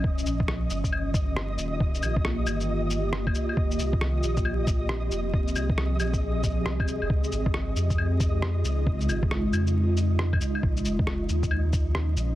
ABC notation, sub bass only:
X:1
M:4/4
L:1/16
Q:"Swing 16ths" 1/4=136
K:Dblyd
V:1 name="Sub bass" clef=bass
E,,,2 B,,,4 G,,,8 E,,,2- | E,,,2 B,,,4 G,,,8 z2 | F,,,2 C,,4 B,,,8 F,,,2- | F,,,2 C,,4 B,,,6 C,, z C,, F,,, |
D,,2 A,,,4 F,,8 D,,2- | D,,2 A,,,4 F,,8 z2 | B,,,2 F,,,4 E,,8 B,,,2 |]